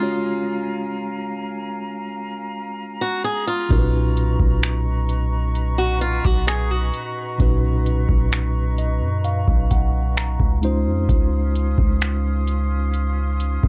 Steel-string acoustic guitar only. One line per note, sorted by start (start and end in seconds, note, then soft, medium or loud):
0.00 1.13 F4 medium
3.01 3.23 F#4 medium
3.24 3.46 G#4 medium
3.47 4.82 F4 medium
5.78 6.00 F#4 medium
6.01 6.24 F4 medium
6.24 6.46 F#4 medium
6.47 6.71 G#4 medium
6.71 8.05 F#4 medium